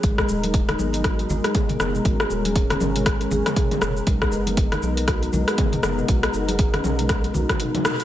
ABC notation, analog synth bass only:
X:1
M:4/4
L:1/8
Q:"Swing 16ths" 1/4=119
K:G#m
V:1 name="Analog synth bass" clef=bass
G,,, D,,,2 G,,,2 G,,, z F,,, | G,,, D,,,2 G,,,2 G,,, z F,,, | B,,, F,,,2 B,,,2 B,,, z F,,, | B,,, F,,,2 B,,,2 B,,, z2 |]